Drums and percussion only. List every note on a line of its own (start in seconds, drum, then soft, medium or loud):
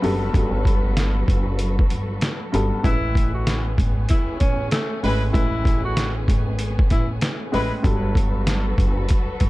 0.04 open hi-hat medium
0.34 kick loud
0.34 closed hi-hat medium
0.65 kick medium
0.65 closed hi-hat medium
0.97 snare loud
0.97 closed hi-hat loud
1.28 kick loud
1.28 closed hi-hat medium
1.59 closed hi-hat loud
1.79 kick loud
1.90 closed hi-hat medium
2.21 snare loud
2.21 closed hi-hat medium
2.54 closed hi-hat medium
2.84 kick loud
2.84 closed hi-hat medium
3.15 kick loud
3.15 closed hi-hat medium
3.47 snare loud
3.47 closed hi-hat loud
3.78 kick loud
3.78 closed hi-hat medium
4.09 kick loud
4.09 closed hi-hat loud
4.40 kick medium
4.40 closed hi-hat medium
4.71 snare loud
4.71 closed hi-hat medium
5.04 open hi-hat medium
5.34 kick loud
5.34 closed hi-hat medium
5.65 kick loud
5.65 closed hi-hat medium
5.97 snare loud
5.97 closed hi-hat medium
6.28 kick loud
6.28 closed hi-hat medium
6.59 closed hi-hat loud
6.79 kick loud
6.90 kick medium
6.90 closed hi-hat medium
7.21 snare loud
7.21 closed hi-hat medium
7.54 open hi-hat medium
7.84 kick loud
7.84 closed hi-hat medium
8.15 kick loud
8.15 closed hi-hat medium
8.47 snare loud
8.47 closed hi-hat loud
8.78 kick loud
8.78 closed hi-hat medium
9.09 kick loud
9.09 closed hi-hat loud
9.40 kick medium
9.40 closed hi-hat medium